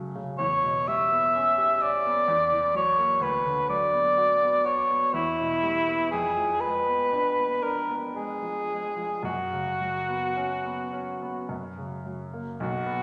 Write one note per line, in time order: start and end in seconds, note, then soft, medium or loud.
0.00 0.35 F#2 medium
0.00 0.15 C#3 soft
0.00 0.41 F#3 medium
0.00 0.41 A3 medium
0.00 0.41 C#4 medium
0.15 0.39 C#3 soft
0.38 2.25 E2 medium
0.38 0.89 C#5 loud
0.63 1.02 B2 soft
0.87 1.26 G3 medium
0.87 1.84 E5 medium
1.11 1.49 B3 soft
1.35 1.72 C#4 medium
1.58 1.95 G4 medium
1.82 2.19 C#4 medium
1.82 2.76 D5 loud
2.06 2.29 B3 medium
2.28 3.19 E2 medium
2.52 2.89 E3 soft
2.74 3.12 F#3 medium
2.74 3.24 C#5 medium
2.98 3.22 A#3 medium
3.21 5.10 D2 medium
3.21 3.69 B4 medium
3.46 3.84 D3 soft
3.69 4.08 F#3 soft
3.69 4.67 D5 loud
3.93 4.32 B3 soft
4.17 4.56 F#4 medium
4.42 4.81 B3 medium
4.65 5.04 F#4 soft
4.65 5.15 C#5 medium
4.91 5.15 B3 medium
5.14 6.09 E2 medium
5.14 6.11 E4 medium
5.39 5.78 B2 soft
5.63 6.02 G3 soft
5.88 6.12 B3 soft
6.11 9.22 F2 medium
6.11 6.62 G#4 medium
6.37 6.76 F3 soft
6.61 7.03 G#3 soft
6.61 7.64 B4 medium
6.87 7.28 B3 soft
7.12 7.53 D4 medium
7.38 7.79 B3 soft
7.62 8.05 D4 soft
7.62 7.97 A#4 medium
7.89 8.32 B3 soft
8.16 8.59 G#3 soft
8.16 9.21 G#4 medium
8.42 8.86 F3 soft
8.70 9.14 G#3 soft
8.96 9.25 F3 soft
9.23 11.45 F#2 medium
9.23 11.46 F#4 medium
9.53 9.97 C#3 soft
9.81 10.25 F#3 soft
10.08 10.53 B3 soft
10.36 10.82 C#4 soft
10.65 11.10 B3 soft
10.93 11.38 C#4 soft
11.22 11.50 B3 soft
11.49 12.58 F#2 medium
11.78 12.24 C#3 soft
12.05 12.50 F#3 soft
12.34 12.61 A#3 soft
12.60 13.03 B1 medium
12.60 13.03 F#4 loud
12.86 13.03 B3 medium